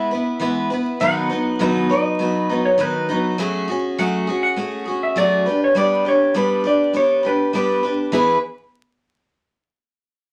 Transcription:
0.00 0.11 G#3 medium
0.00 0.11 B3 medium
0.00 0.12 E4 medium
0.00 0.96 E5 medium
0.11 0.40 B3 soft
0.11 0.40 E4 medium
0.11 0.41 B4 medium
0.40 0.70 E3 medium
0.40 0.70 G#3 medium
0.40 0.71 B3 medium
0.40 0.71 E4 medium
0.40 0.69 B4 medium
0.70 1.00 B3 medium
0.70 1.01 E4 medium
0.70 1.00 B4 medium
1.00 1.30 B2 medium
1.00 1.30 D#3 medium
1.00 1.31 F#3 medium
1.00 1.31 B3 medium
1.00 1.29 D#4 medium
1.00 1.29 B4 medium
1.00 1.67 F#5 loud
1.30 1.59 F#3 soft
1.30 1.60 B3 medium
1.30 1.60 D#4 medium
1.30 1.60 B4 medium
1.59 1.89 B2 medium
1.59 1.90 D#3 medium
1.59 1.90 F#3 medium
1.59 1.90 B3 medium
1.59 1.90 D#4 loud
1.59 1.88 B4 medium
1.67 1.93 E5 loud
1.90 2.18 F#3 soft
1.90 2.19 B3 medium
1.90 2.20 D#4 medium
1.90 2.19 B4 medium
1.90 2.65 D#5 medium
2.19 2.49 F#3 medium
2.19 2.49 B3 medium
2.19 2.49 D#4 medium
2.19 2.48 B4 medium
2.49 2.77 F#3 soft
2.49 2.78 B3 medium
2.49 2.79 D#4 medium
2.49 2.78 B4 medium
2.65 2.80 C#5 medium
2.78 3.08 B2 medium
2.78 3.08 D#3 medium
2.78 3.09 F#3 medium
2.78 3.09 B3 medium
2.78 3.08 D#4 medium
2.78 3.08 B4 medium
2.78 3.24 B4 medium
3.09 3.37 F#3 soft
3.09 3.39 B3 medium
3.09 3.39 D#4 medium
3.09 3.38 B4 medium
3.38 3.68 F#3 medium
3.38 3.68 A3 medium
3.38 3.69 C#4 medium
3.38 3.69 F#4 loud
3.38 3.67 G#4 loud
3.68 3.98 C#4 medium
3.68 3.99 F#4 medium
3.68 3.98 G#4 medium
3.98 4.28 F#3 medium
3.98 4.28 A3 medium
3.98 4.28 C#4 medium
3.98 4.27 F#4 medium
3.98 4.26 G#4 medium
3.98 4.42 F#5 loud
4.27 4.56 C#4 soft
4.27 4.57 F#4 medium
4.27 4.57 G#4 medium
4.43 5.03 F#5 loud
4.56 4.87 A3 medium
4.56 4.87 C#4 medium
4.56 4.87 F#4 medium
4.56 4.84 G#4 medium
4.86 5.16 C#4 soft
4.86 5.17 F#4 soft
4.86 5.16 G#4 medium
5.03 5.18 E5 medium
5.16 5.46 F#3 medium
5.16 5.46 A3 medium
5.16 5.47 C#4 medium
5.16 5.47 F#4 medium
5.16 5.45 G#4 medium
5.16 5.63 D5 loud
5.46 5.75 D4 soft
5.46 5.76 G4 medium
5.46 5.76 B4 medium
5.64 5.77 C#5 medium
5.75 6.05 G3 medium
5.75 6.06 B3 medium
5.75 6.06 D4 medium
5.75 6.05 G4 medium
5.75 6.04 B4 medium
5.75 6.08 D5 loud
6.05 6.34 D4 soft
6.05 6.35 G4 medium
6.05 6.35 B4 medium
6.05 6.37 C#5 medium
6.34 6.65 G3 medium
6.34 6.65 B3 medium
6.34 6.65 D4 medium
6.34 6.64 G4 medium
6.34 6.63 B4 medium
6.34 6.64 B4 medium
6.64 6.93 D4 soft
6.64 6.94 G4 medium
6.64 6.94 B4 medium
6.64 6.96 D5 medium
6.93 7.24 B3 medium
6.93 7.24 D4 medium
6.93 7.24 G4 medium
6.93 7.22 B4 medium
6.93 7.26 C#5 medium
7.23 7.54 D4 soft
7.23 7.54 G4 medium
7.23 7.53 B4 medium
7.23 7.54 B4 medium
7.53 7.83 G3 medium
7.53 7.84 B3 medium
7.53 7.84 D4 medium
7.53 7.83 G4 medium
7.53 7.96 B4 medium
7.53 7.82 B4 medium
7.83 8.13 D4 soft
7.83 8.13 G4 medium
7.83 8.13 B4 medium
8.12 8.36 E3 medium
8.12 8.37 B3 medium
8.12 8.37 E4 medium
8.12 8.37 G#4 medium
8.12 8.41 B4 medium
8.12 8.38 B4 loud

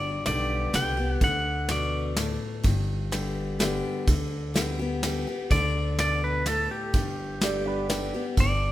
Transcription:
0.00 0.17 G1 medium
0.00 0.69 G2 medium
0.00 0.26 D5 medium
0.26 0.67 B1 medium
0.26 0.71 D3 medium
0.26 0.72 G3 medium
0.26 0.72 B3 medium
0.26 0.72 G4 medium
0.26 0.76 D5 medium
0.26 snare medium
0.26 ride medium
0.73 1.15 C2 medium
0.73 0.97 D3 medium
0.73 0.97 G3 medium
0.73 0.98 B3 medium
0.73 0.96 G4 medium
0.73 1.11 G5 loud
0.73 snare medium
0.73 ride medium
0.97 1.21 B3 soft
0.97 1.20 G4 medium
1.11 1.23 F#5 loud
1.21 2.36 D2 medium
1.21 2.12 D3 medium
1.21 1.72 F#5 loud
1.21 kick loud
1.21 ride medium
1.69 2.15 B2 medium
1.69 2.38 D5 medium
1.69 snare medium
1.69 ride medium
2.16 2.63 A2 medium
2.16 snare medium
2.16 ride medium
2.64 3.80 G1 medium
2.64 3.55 G2 medium
2.64 kick loud
2.64 ride medium
3.12 3.58 D3 medium
3.12 3.58 G3 medium
3.12 3.58 B3 medium
3.12 3.59 G4 medium
3.12 snare medium
3.12 ride medium
3.59 4.05 D3 medium
3.59 4.06 G3 medium
3.59 4.06 B3 medium
3.59 4.06 G4 medium
3.59 snare medium
3.59 ride medium
4.08 5.23 D2 medium
4.08 4.53 D3 medium
4.08 kick loud
4.08 ride medium
4.54 4.78 D3 medium
4.54 4.78 G3 medium
4.54 4.79 B3 medium
4.54 4.78 G4 medium
4.54 snare medium
4.54 ride medium
4.79 5.04 B3 soft
4.79 5.02 G4 medium
5.03 5.27 D3 medium
5.03 5.27 G3 medium
5.03 5.27 B3 medium
5.03 5.26 G4 medium
5.03 snare medium
5.03 ride medium
5.27 5.51 B3 soft
5.27 5.50 G4 medium
5.50 6.66 D2 medium
5.50 6.42 D3 medium
5.50 5.99 D5 medium
5.50 kick loud
5.50 ride medium
5.99 6.44 B2 medium
5.99 6.24 D5 medium
5.99 snare medium
5.99 ride medium
6.24 6.47 B4 medium
6.46 6.92 A2 medium
6.46 6.69 A4 medium
6.46 snare medium
6.46 ride medium
6.71 7.86 G4 medium
6.93 8.09 G1 medium
6.93 7.85 G2 medium
6.93 kick loud
6.93 ride medium
7.41 7.87 D3 medium
7.41 7.87 G3 medium
7.41 7.88 B3 medium
7.41 7.88 G4 medium
7.41 7.66 D5 medium
7.41 snare medium
7.41 ride medium
7.66 8.22 D4 medium
7.66 8.25 B4 medium
7.89 8.13 D3 medium
7.89 8.13 G3 medium
7.89 8.13 B3 medium
7.89 8.13 G4 medium
7.89 snare medium
7.89 ride medium
8.14 8.38 B3 soft
8.14 8.37 G4 medium
8.37 8.72 G1 medium
8.37 8.72 G2 medium
8.37 8.72 D5 medium
8.37 kick loud
8.37 ride medium

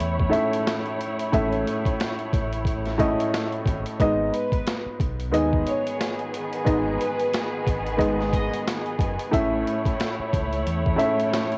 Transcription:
0.00 0.30 E2 loud
0.00 0.29 A2 loud
0.00 0.30 A3 medium
0.00 3.96 A3 medium
0.00 0.31 C#4 medium
0.00 0.31 E4 medium
0.00 3.96 E4 medium
0.00 3.96 C#5 medium
0.00 0.32 E5 loud
0.00 closed hi-hat medium
0.20 kick medium
0.29 0.94 A2 medium
0.29 0.95 A3 medium
0.29 0.95 C#4 medium
0.29 0.95 E4 medium
0.29 0.96 E5 loud
0.29 closed hi-hat medium
0.53 closed hi-hat medium
0.67 snare loud
0.67 closed hi-hat loud
0.86 closed hi-hat soft
1.01 closed hi-hat medium
1.19 closed hi-hat medium
1.32 1.63 A1 loud
1.32 2.18 A2 loud
1.32 2.19 A3 medium
1.32 2.19 C#4 medium
1.32 2.19 E4 medium
1.32 2.19 E5 loud
1.32 kick loud
1.32 closed hi-hat loud
1.52 closed hi-hat soft
1.67 closed hi-hat medium
1.85 kick loud
1.85 closed hi-hat medium
2.00 snare loud
2.00 closed hi-hat loud
2.19 closed hi-hat soft
2.33 3.15 A1 medium
2.33 kick loud
2.33 closed hi-hat medium
2.53 closed hi-hat soft
2.65 kick medium
2.65 closed hi-hat medium
2.86 snare soft
2.86 closed hi-hat soft
2.98 3.62 A2 medium
2.98 3.62 A3 medium
2.98 3.62 C#4 medium
2.98 3.63 E4 medium
2.98 3.63 D#5 loud
2.98 kick medium
2.98 closed hi-hat medium
3.20 closed hi-hat medium
3.34 snare loud
3.34 closed hi-hat loud
3.52 closed hi-hat soft
3.66 3.83 G#1 medium
3.66 kick loud
3.66 closed hi-hat medium
3.86 closed hi-hat medium
3.99 4.30 G#1 loud
3.99 4.85 G#2 medium
3.99 4.86 G#3 medium
3.99 4.86 B3 medium
3.99 4.86 D#4 medium
3.99 4.86 D#5 loud
3.99 kick loud
3.99 closed hi-hat loud
4.32 4.82 B4 medium
4.32 closed hi-hat medium
4.52 kick loud
4.52 closed hi-hat medium
4.67 snare loud
4.67 closed hi-hat loud
4.86 muted fingered electric bass stroke soft
5.00 5.33 B1 medium
5.00 kick loud
5.00 closed hi-hat medium
5.20 closed hi-hat soft
5.31 5.63 D#2 loud
5.31 6.18 G#2 medium
5.31 9.29 D#3 medium
5.31 6.18 G#3 medium
5.31 6.19 B3 medium
5.31 9.29 B3 medium
5.31 6.19 D#4 medium
5.31 9.29 G#4 loud
5.31 6.19 D#5 loud
5.31 closed hi-hat medium
5.53 kick medium
5.66 5.96 C#5 medium
5.66 closed hi-hat medium
5.87 closed hi-hat medium
6.01 snare loud
6.01 closed hi-hat loud
6.19 closed hi-hat soft
6.34 closed hi-hat medium
6.53 closed hi-hat medium
6.64 6.97 G#1 loud
6.64 7.51 G#2 medium
6.64 7.51 G#3 medium
6.64 7.52 B3 medium
6.64 7.52 D#4 medium
6.64 7.52 D#5 medium
6.64 kick loud
6.64 closed hi-hat loud
6.99 7.49 B4 medium
6.99 closed hi-hat medium
7.19 closed hi-hat medium
7.33 snare loud
7.33 closed hi-hat loud
7.67 8.48 G#1 medium
7.67 kick loud
7.67 closed hi-hat medium
7.86 closed hi-hat soft
7.97 8.84 G#2 medium
7.97 8.84 G#3 medium
7.97 8.85 B3 medium
7.97 8.85 D#4 medium
7.97 8.85 D#5 medium
7.97 kick medium
7.97 closed hi-hat medium
8.20 snare soft
8.33 8.51 D#5 medium
8.33 kick loud
8.33 closed hi-hat medium
8.54 closed hi-hat medium
8.68 snare loud
8.68 closed hi-hat loud
8.86 closed hi-hat soft
8.99 9.17 F#1 medium
8.99 kick loud
8.99 closed hi-hat medium
9.19 closed hi-hat medium
9.31 9.63 A1 loud
9.31 10.18 A2 loud
9.31 10.18 A3 medium
9.31 11.58 A3 medium
9.31 10.19 C#4 medium
9.31 11.58 E4 medium
9.31 10.19 E4 medium
9.31 11.58 C#5 medium
9.31 10.19 E5 loud
9.31 kick loud
9.31 closed hi-hat loud
9.67 closed hi-hat medium
9.85 kick loud
9.85 closed hi-hat medium
10.00 snare loud
10.00 closed hi-hat loud
10.19 muted fingered electric bass stroke soft
10.33 10.63 C#2 medium
10.33 kick loud
10.33 closed hi-hat medium
10.53 closed hi-hat soft
10.67 10.97 E2 loud
10.67 closed hi-hat medium
10.86 kick medium
10.96 11.58 A2 medium
10.96 11.58 A3 medium
10.96 11.58 C#4 medium
10.96 11.58 E4 medium
10.96 11.58 E5 loud
10.96 closed hi-hat medium
11.20 closed hi-hat medium
11.34 snare loud
11.34 closed hi-hat loud
11.52 closed hi-hat soft

